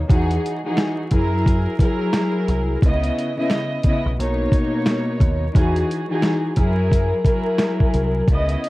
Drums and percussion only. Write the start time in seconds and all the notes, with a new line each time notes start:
0.10 kick, closed hi-hat
0.31 closed hi-hat
0.46 closed hi-hat
0.77 snare, closed hi-hat
1.11 kick, closed hi-hat
1.46 kick, closed hi-hat
1.79 kick, closed hi-hat
2.13 snare, closed hi-hat
2.48 closed hi-hat
2.82 kick, closed hi-hat
3.03 closed hi-hat
3.18 closed hi-hat
3.50 snare, closed hi-hat
3.83 kick, closed hi-hat
4.20 closed hi-hat
4.52 kick, closed hi-hat
4.86 snare, closed hi-hat
5.20 kick, closed hi-hat
5.55 kick, closed hi-hat
5.76 closed hi-hat
5.91 closed hi-hat
6.22 snare, closed hi-hat
6.56 kick, closed hi-hat
6.92 kick, closed hi-hat
7.25 kick, closed hi-hat
7.58 snare, closed hi-hat
7.80 kick
7.94 closed hi-hat
8.28 kick, closed hi-hat
8.49 closed hi-hat
8.64 closed hi-hat